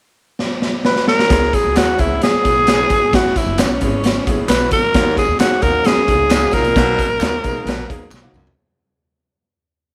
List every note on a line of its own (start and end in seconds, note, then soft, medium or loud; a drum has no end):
0.39 snare soft
0.62 snare medium
0.85 1.06 B4 medium
0.85 snare medium
0.96 snare medium
1.08 1.56 A#4 loud
1.08 snare medium
1.19 snare medium
1.29 1.48 C#2 medium
1.29 1.54 B3 medium
1.29 1.54 C#4 medium
1.29 1.54 E4 medium
1.29 1.55 G#4 loud
1.29 kick loud
1.29 snare loud
1.29 closed hi-hat medium
1.29 tambourine soft
1.43 snare soft
1.53 1.78 G#4 medium
1.53 kick medium
1.53 closed hi-hat medium
1.53 tambourine medium
1.64 1.74 C#2 medium
1.74 1.94 D#2 medium
1.74 1.87 B3 medium
1.74 1.88 C#4 medium
1.74 1.88 E4 medium
1.74 2.02 F#4 medium
1.74 1.88 G#4 medium
1.74 snare loud
1.74 clap medium
1.74 closed hi-hat loud
1.74 tambourine medium
1.97 2.17 C#2 medium
1.97 2.22 B3 medium
1.97 2.22 C#4 medium
1.97 2.23 E4 medium
1.97 2.22 E4 medium
1.97 2.23 G#4 medium
1.97 kick medium
1.97 closed hi-hat medium
1.97 tambourine soft
2.21 3.16 G#4 loud
2.21 snare medium
2.21 closed hi-hat medium
2.21 tambourine medium
2.33 muted upright bass stroke soft
2.43 2.81 B1 medium
2.43 2.62 B3 medium
2.43 2.62 C#4 soft
2.43 2.63 E4 medium
2.43 2.63 G#4 medium
2.43 kick medium
2.43 closed hi-hat medium
2.43 tambourine soft
2.67 snare loud
2.67 clap medium
2.67 closed hi-hat medium
2.67 tambourine medium
2.77 2.96 B3 medium
2.77 2.97 C#4 medium
2.77 2.97 E4 medium
2.77 2.97 G#4 medium
2.90 3.08 G1 medium
2.90 kick medium
2.90 closed hi-hat medium
2.90 tambourine medium
3.13 3.31 F#1 medium
3.13 3.37 B3 medium
3.13 3.38 C#4 medium
3.13 3.38 E4 medium
3.13 3.38 F#4 medium
3.13 kick loud
3.13 snare medium
3.13 closed hi-hat medium
3.13 tambourine soft
3.25 snare soft
3.36 3.61 E4 medium
3.36 kick medium
3.36 closed hi-hat medium
3.36 tambourine medium
3.46 3.60 F#1 medium
3.58 3.77 B1 medium
3.58 3.70 B3 medium
3.58 3.71 C#4 medium
3.58 4.27 C#4 medium
3.58 3.71 E4 medium
3.58 3.71 F#4 medium
3.58 snare loud
3.58 clap medium
3.58 closed hi-hat loud
3.58 tambourine medium
3.80 4.18 G#1 medium
3.80 4.05 B3 medium
3.80 4.05 C#4 medium
3.80 4.06 E4 medium
3.80 4.06 G#4 medium
3.80 kick medium
3.80 closed hi-hat medium
3.80 tambourine soft
4.04 snare medium
4.04 closed hi-hat medium
4.04 tambourine medium
4.26 4.45 F#1 medium
4.26 4.45 B3 medium
4.26 4.45 C#4 medium
4.26 4.46 E4 medium
4.26 4.46 G#4 medium
4.26 kick medium
4.26 closed hi-hat medium
4.26 tambourine soft
4.48 4.67 B1 medium
4.48 4.70 B4 medium
4.48 snare loud
4.48 clap loud
4.48 closed hi-hat loud
4.48 tambourine medium
4.60 4.78 B3 medium
4.60 4.79 C#4 medium
4.60 4.79 E4 medium
4.60 4.79 F#4 medium
4.71 4.90 E2 medium
4.71 5.15 A#4 loud
4.71 kick medium
4.71 closed hi-hat medium
4.71 tambourine medium
4.94 5.13 D#2 medium
4.94 5.27 D#2 medium
4.94 5.19 A#3 medium
4.94 5.20 C#4 medium
4.94 5.20 D#4 medium
4.94 5.20 F#4 medium
4.94 kick loud
4.94 snare loud
4.94 closed hi-hat medium
4.94 tambourine soft
5.17 5.39 G#4 medium
5.17 kick medium
5.17 closed hi-hat medium
5.17 tambourine medium
5.28 5.37 D#2 medium
5.39 5.58 E2 medium
5.39 5.52 A#3 medium
5.39 5.52 C#4 medium
5.39 5.53 D#4 medium
5.39 5.64 F#4 medium
5.39 5.53 G#4 medium
5.39 snare loud
5.39 clap medium
5.39 closed hi-hat loud
5.39 tambourine medium
5.62 5.81 D#2 medium
5.62 5.87 A#3 medium
5.62 5.87 C#4 medium
5.62 5.87 D#4 medium
5.62 5.88 F#4 medium
5.62 5.88 A#4 medium
5.62 kick medium
5.62 closed hi-hat medium
5.62 tambourine soft
5.85 6.04 F#2 medium
5.85 6.55 G#4 medium
5.85 snare loud
5.85 closed hi-hat medium
5.85 tambourine medium
5.96 muted upright bass stroke soft
6.08 6.44 C#2 medium
6.08 6.26 A#3 medium
6.08 6.26 C#4 medium
6.08 6.27 D#4 medium
6.08 6.27 G#4 medium
6.08 kick medium
6.08 closed hi-hat medium
6.08 tambourine soft
6.30 6.49 G#2 medium
6.30 snare loud
6.30 clap loud
6.30 closed hi-hat loud
6.30 tambourine loud
6.41 6.60 A#3 medium
6.41 6.60 C#4 medium
6.41 6.60 D#4 medium
6.41 6.61 F#4 medium
6.51 6.71 C2 medium
6.51 6.72 A#2 medium
6.51 8.12 A#4 medium
6.51 kick medium
6.51 closed hi-hat medium
6.51 tambourine medium
6.64 closed hi-hat medium
6.75 6.94 B1 medium
6.75 7.08 B2 medium
6.75 7.00 A#3 medium
6.75 7.00 B3 medium
6.75 7.00 D#4 medium
6.75 7.00 F#4 medium
6.75 kick loud
6.75 snare loud
6.75 closed hi-hat medium
6.75 tambourine soft
6.99 kick medium
6.99 closed hi-hat medium
6.99 tambourine medium
7.09 7.18 B1 medium
7.19 7.39 D#2 medium
7.19 7.32 A#3 medium
7.19 7.33 B3 medium
7.19 7.33 D#4 medium
7.19 7.34 F#4 medium
7.19 snare loud
7.19 clap loud
7.19 closed hi-hat loud
7.19 tambourine loud
7.42 7.62 B1 medium
7.42 7.67 A#3 medium
7.42 7.67 B3 medium
7.42 7.68 D#4 medium
7.42 7.68 G#4 medium
7.42 kick medium
7.42 closed hi-hat medium
7.42 tambourine soft
7.65 7.84 A#1 medium
7.65 7.85 B2 medium
7.65 snare loud
7.65 closed hi-hat medium
7.65 tambourine medium
7.88 8.08 D#2 medium
7.88 8.07 A#3 medium
7.88 8.07 B3 medium
7.88 8.07 D#4 medium
7.88 8.08 G#4 medium
7.88 kick medium
7.88 closed hi-hat medium
8.11 8.29 B1 medium
8.11 snare medium
8.11 clap loud
8.11 tambourine loud
8.22 8.41 A#3 medium
8.22 8.42 B3 medium
8.22 8.42 D#4 medium
8.22 8.42 F#4 medium
8.22 high tom soft
8.33 8.52 C2 medium
8.33 8.53 F#2 medium
8.33 mid tom medium
8.33 tambourine soft
8.47 floor tom medium